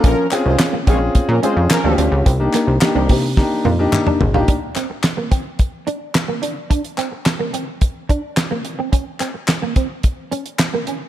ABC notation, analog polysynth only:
X:1
M:4/4
L:1/16
Q:1/4=108
K:Bb
V:1 name="Analog polysynth"
[F,_DB]2 z [_A,Fc] z2 [A,F_d] z2 [F,DB] [A,Fc] z [F,DB]2 z2 | z16 | z16 | z16 |
z16 |]